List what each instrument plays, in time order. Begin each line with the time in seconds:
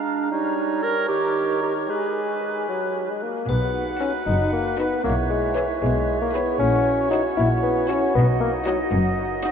Already playing: bassoon G#3, clarinet D4, oboe F5, flute section A#5
0.31 bassoon G3, clarinet D#4, oboe C#5
0.57 clarinet D#4
0.83 clarinet A#4
1.08 bassoon D#3, clarinet G4
1.63 clarinet G4
1.89 bassoon G#3, clarinet G#4, oboe B4, flute section G#5
2.69 bassoon F#3
3.10 bassoon G#3
3.23 bassoon A#3
3.48 double bass section B1, cello section B2, bassoon B3, french horn section D#4 F#4, clarinet D#4, oboe B4, flute section F#5, triangle
4.00 bassoon C#4, viola section D#4, violin section F#4 B4
4.26 double bass section F#1, cello section F#2, bassoon D#4
4.52 bassoon A#3
4.78 bassoon B3, viola section D#4, violin section F#4 B4
5.04 double bass section B1, cello section B2, bassoon A#3, clarinet E4, french horn section E4 G#4, oboe C#5, flute section E5
5.30 bassoon G#3
5.55 bassoon E3, viola section E4, violin section G#4 C#5
5.82 double bass section B1, cello section B2, bassoon G#3
6.21 bassoon A#3
6.34 bassoon B3, viola section E4, violin section G#4 C#5
6.59 double bass section A#1, cello section A#2, bassoon C#4, french horn section F#4, flute section F#5
7.11 bassoon D#4, viola section E4, violin section F#4 C#5
7.37 double bass section A#1, cello section A#2, bassoon E4
7.63 bassoon B3
7.88 bassoon C#4, viola section E4, violin section F#4 C#5
8.15 double bass section B1, cello section B2, bassoon B3, french horn section D#4, clarinet D#4, oboe D#5
8.40 bassoon A#3
8.66 bassoon F#3, viola section D#4, violin section F#4 D#5
8.93 double bass section F#1, cello section F#2
9.45 viola section D#4, violin section F#4 D#5